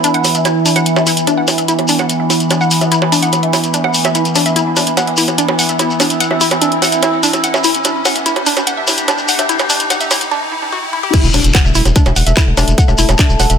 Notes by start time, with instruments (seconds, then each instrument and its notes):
Already playing: synth drone E3 E4, ambient pad B3 E4 E5 B5, riser
0.04 synth arpeggio sound D4, closed hi-hat, shekere
0.14 synth arpeggio sound F#5, closed hi-hat
0.24 open hi-hat, high bongo, shekere
0.35 synth arpeggio sound E5, closed hi-hat, shekere
0.45 synth arpeggio sound E4, closed hi-hat, high bongo, shekere
0.66 synth arpeggio sound D4, open hi-hat, shekere
0.76 synth arpeggio sound F#5, closed hi-hat, high bongo, shekere
0.86 closed hi-hat, shekere
0.96 synth arpeggio sound E5, high bongo, shekere
1.06 synth arpeggio sound E4, open hi-hat, shekere
1.17 closed hi-hat, shekere
1.27 synth drone B3, synth arpeggio sound D4, closed hi-hat, high bongo, shekere
1.37 synth arpeggio sound F#5
1.48 open hi-hat, high bongo, shekere
1.58 synth arpeggio sound E5, closed hi-hat, shekere
1.68 synth arpeggio sound E4, closed hi-hat, shekere
1.79 closed hi-hat, high bongo
1.88 synth arpeggio sound D4, open hi-hat, shekere
1.98 synth arpeggio sound F#5, high bongo, shekere
2.09 closed hi-hat, shekere
2.20 synth arpeggio sound E5
2.30 synth arpeggio sound E4, open hi-hat, high bongo, shekere
2.40 closed hi-hat, shekere
2.50 synth arpeggio sound D4, closed hi-hat, high bongo, shekere
2.61 synth arpeggio sound F#5, shekere
2.71 open hi-hat, shekere
2.81 synth arpeggio sound E5, closed hi-hat, high bongo, shekere
2.92 synth arpeggio sound E4, closed hi-hat, shekere
3.02 high bongo
3.12 synth arpeggio sound D4, open hi-hat, shekere
3.22 synth arpeggio sound F#5, closed hi-hat, shekere
3.32 closed hi-hat, high bongo, shekere
3.43 synth arpeggio sound E5, closed hi-hat
3.53 synth arpeggio sound E4, open hi-hat, high bongo, shekere
3.63 closed hi-hat, shekere
3.74 synth arpeggio sound D4, closed hi-hat, shekere
3.84 synth arpeggio sound F#5, high bongo
3.94 open hi-hat, shekere
4.04 synth arpeggio sound E5, closed hi-hat, high bongo, shekere
4.15 synth arpeggio sound E4, closed hi-hat, shekere
4.25 closed hi-hat, shekere
4.35 synth arpeggio sound D4, open hi-hat, high bongo, shekere
4.46 synth arpeggio sound E5, closed hi-hat, shekere
4.56 synth drone E4, synth arpeggio sound E4, closed hi-hat, shekere
4.76 synth arpeggio sound D4, open hi-hat, high bongo, shekere
4.87 closed hi-hat, shekere
4.97 synth arpeggio sound F#5, closed hi-hat, high bongo, shekere
5.07 synth arpeggio sound E5, closed hi-hat
5.17 synth arpeggio sound E4, open hi-hat, shekere
5.27 closed hi-hat, high bongo, shekere
5.38 synth arpeggio sound D4, closed hi-hat, shekere
5.49 high bongo
5.59 synth arpeggio sound F#5, open hi-hat, shekere
5.69 synth arpeggio sound E5, closed hi-hat, shekere
5.79 synth arpeggio sound E4, closed hi-hat, high bongo, shekere
5.90 shekere
6.00 synth arpeggio sound D4, open hi-hat, high bongo, shekere
6.10 closed hi-hat, shekere
6.20 synth arpeggio sound F#5, closed hi-hat, shekere
6.31 synth arpeggio sound E5, high bongo
6.41 synth arpeggio sound E4, open hi-hat, shekere
6.51 closed hi-hat, high bongo, shekere
6.62 synth arpeggio sound D4, closed hi-hat, shekere
6.72 closed hi-hat
6.82 synth arpeggio sound F#5, open hi-hat, high bongo, shekere
6.92 synth arpeggio sound E5, closed hi-hat, shekere
7.02 synth arpeggio sound E4, closed hi-hat, high bongo, shekere
7.23 synth arpeggio sound D4, open hi-hat, shekere
7.33 closed hi-hat, high bongo, shekere
7.44 synth arpeggio sound F#5, closed hi-hat, shekere
7.54 synth arpeggio sound E5, high bongo, shekere
7.64 synth arpeggio sound E4, open hi-hat, shekere
7.74 closed hi-hat, shekere
7.84 synth arpeggio sound D4, synth drone G4, closed hi-hat, high bongo, shekere
8.05 synth arpeggio sound F#5, open hi-hat, high bongo, shekere
8.15 synth arpeggio sound E5, closed hi-hat, shekere
8.26 synth arpeggio sound E4, closed hi-hat, shekere
8.36 closed hi-hat, high bongo
8.46 synth arpeggio sound D4, open hi-hat, shekere
8.57 closed hi-hat, high bongo, shekere
8.67 synth arpeggio sound F#5, closed hi-hat, shekere
8.77 synth arpeggio sound E5
8.87 synth arpeggio sound E4, open hi-hat, high bongo, shekere
8.98 closed hi-hat, shekere
9.08 synth arpeggio sound D4, closed hi-hat, high bongo, shekere
9.18 shekere
9.28 synth arpeggio sound F#5, open hi-hat, shekere
9.39 synth arpeggio sound E5, closed hi-hat, high bongo, shekere
9.49 synth arpeggio sound E4, closed hi-hat, shekere
9.59 closed hi-hat, high bongo, shekere
9.69 synth arpeggio sound D4, open hi-hat, shekere
9.80 closed hi-hat, shekere
9.90 synth arpeggio sound F#5, closed hi-hat, high bongo, shekere
10.01 synth arpeggio sound E5, closed hi-hat, shekere
10.11 synth arpeggio sound E4, open hi-hat, high bongo, shekere
10.21 closed hi-hat, shekere
10.31 synth arpeggio sound D4
10.52 synth arpeggio sound E4
10.62 synth arpeggio sound D4
10.72 synth arpeggio sound F#4
10.93 synth arpeggio sound E4
11.03 synth arpeggio sound G4
11.13 synth drone A3 A4, synth arpeggio sound E4, kick, closed hi-hat, crash, impact, shekere
11.24 analog synth bass E1, shekere
11.33 analog synth bass E1, synth arpeggio sound D4, open hi-hat, high bongo, shekere
11.44 analog synth bass E1, closed hi-hat, shekere
11.54 synth arpeggio sound F#5, kick, clap, closed hi-hat, high bongo, shekere
11.65 analog synth bass E1, synth arpeggio sound E5, shekere
11.74 analog synth bass E1, synth arpeggio sound E4, open hi-hat, shekere
11.85 analog synth bass E1, closed hi-hat, high bongo, shekere
11.96 synth arpeggio sound D4, kick, closed hi-hat, shekere
12.06 analog synth bass E1, closed hi-hat, high bongo, shekere
12.16 analog synth bass E1, synth arpeggio sound F#5, open hi-hat, shekere
12.27 analog synth bass E1, synth arpeggio sound E5, closed hi-hat, shekere
12.37 synth arpeggio sound E4, kick, clap, closed hi-hat, high bongo, shekere
12.47 analog synth bass E1
12.57 analog synth bass E1, synth arpeggio sound D4, open hi-hat, high bongo, shekere
12.68 analog synth bass E1, closed hi-hat, shekere
12.78 synth arpeggio sound F#5, kick, closed hi-hat, shekere
12.88 analog synth bass E1, synth arpeggio sound E5, high bongo, shekere
12.98 analog synth bass E1, synth arpeggio sound E4, open hi-hat, shekere
13.09 analog synth bass E1, closed hi-hat, high bongo, shekere
13.18 synth arpeggio sound D4, kick, clap, closed hi-hat, shekere
13.29 analog synth bass E1, shekere
13.39 analog synth bass E1, synth arpeggio sound F#5, open hi-hat, high bongo, shekere
13.50 analog synth bass E1, synth arpeggio sound E5, closed hi-hat, shekere